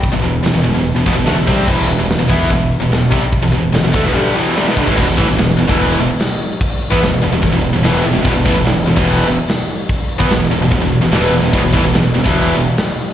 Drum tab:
CC |----------------|x---------------|----------------|x---x---x---x---|
HH |o-o-o-o-o---o-o-|--o-o-o-o-o-o---|o-o-o-o---------|----------------|
SD |----o-------o---|----o-------o---|----o-------oo--|----o-------o---|
BD |o---------o---o-|o-----o-o-----o-|o-----o-------oo|o-o----o--------|

CC |x---x---x---x---|x---x---x---x---|x---x---x---x---|x---x---x---x---|
HH |----------------|----------------|----------------|----------------|
SD |----o-------o---|----o-------o---|----o-------o---|----o-------o---|
BD |o--o----o-------|o-o----o--------|o--o----o-------|o-o----o--------|